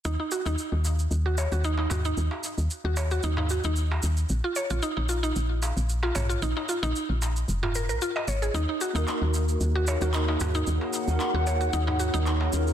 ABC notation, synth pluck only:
X:1
M:4/4
L:1/16
Q:"Swing 16ths" 1/4=113
K:Ebm
V:1 name="Synth pluck"
E E G E4 z2 G d G E E G E- | E3 z2 G d G E E G E4 z | z F d F E E F E4 z2 F d F | E E F E4 z2 F B B F e d A |
E E G E4 z2 G d G E E G E- | E3 z2 G d G E E G E4 z |]